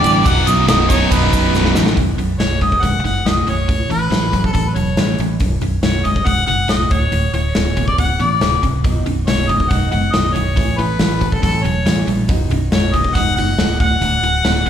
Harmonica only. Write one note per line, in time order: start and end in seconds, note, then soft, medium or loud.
0.00 0.29 D5 loud
0.28 0.50 F#5 loud
0.49 0.68 D#5 loud
0.68 0.91 D#5 medium
0.90 1.13 C#5 medium
1.12 1.76 B4 medium
2.38 2.59 C#5 medium
2.62 2.84 D#5 medium
2.83 3.04 F#5 loud
3.04 3.28 F#5 medium
3.27 3.51 D#5 medium
3.50 3.90 C#5 medium
3.91 4.41 B4 medium
4.45 4.52 A4 medium
4.52 4.70 A4 medium
4.69 4.77 B4 medium
4.75 5.19 C#5 medium
5.83 6.06 C#5 medium
6.05 6.28 D#5 medium
6.26 6.46 F#5 loud
6.46 6.72 F#5 loud
6.71 6.93 D#5 medium
6.92 7.33 C#5 medium
7.34 7.84 C#5 medium
7.88 7.98 D5 medium
7.99 8.22 F#5 medium
8.21 8.64 D5 medium
9.27 9.51 C#5 loud
9.49 9.71 D#5 medium
9.70 9.91 F#5 loud
9.91 10.13 F#5 medium
10.12 10.35 D#5 medium
10.34 10.79 C#5 medium
10.78 11.34 B4 medium
11.33 11.42 A4 medium
11.43 11.65 A4 medium
11.63 12.07 C#5 medium
12.73 12.94 C#5 medium
12.93 13.16 D#5 medium
13.15 13.35 F#5 loud
13.36 13.77 F#5 loud
13.80 14.70 F#5 loud